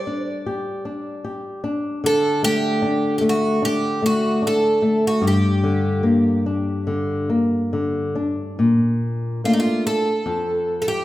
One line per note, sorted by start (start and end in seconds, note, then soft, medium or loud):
0.00 1.98 G3 medium
0.00 1.60 D5 medium
0.07 0.44 D4 medium
0.46 0.83 G4 medium
0.85 1.22 D4 medium
1.24 1.62 G4 medium
1.64 2.01 D4 medium
2.04 5.19 D3 medium
2.04 2.44 A4 loud
2.43 2.80 A3 medium
2.43 3.17 G4 loud
2.82 3.20 D4 medium
3.18 3.59 A3 medium
3.18 3.23 G4 medium
3.29 3.65 F#4 medium
3.62 3.99 D4 medium
3.62 4.03 G4 medium
4.02 4.40 A3 medium
4.02 4.44 F#4 medium
4.42 4.81 D4 soft
4.47 5.06 A4 medium
4.82 5.21 A3 medium
5.07 5.25 F#4 medium
5.22 8.55 G2 medium
5.27 7.72 G4 medium
5.64 6.03 D3 soft
6.03 6.44 A#3 medium
6.46 6.87 D4 soft
6.87 7.29 D3 medium
7.30 7.72 A#3 soft
7.73 8.15 D3 soft
8.15 8.57 D4 medium
8.59 9.40 A#2 medium
9.44 10.10 A3 soft
9.44 10.10 A#3 soft
9.44 10.10 D4 soft
9.44 9.51 F4 medium
9.53 9.59 D#4 medium
9.60 9.86 F4 medium
9.87 10.81 A4 medium
10.26 11.04 F2 medium
10.82 10.87 A4 medium
10.88 11.04 G4 medium